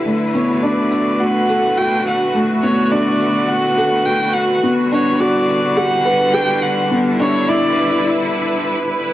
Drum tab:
HH |-x-x-x-x|-x-x-x-x|-x-x-x-x|-x-x----|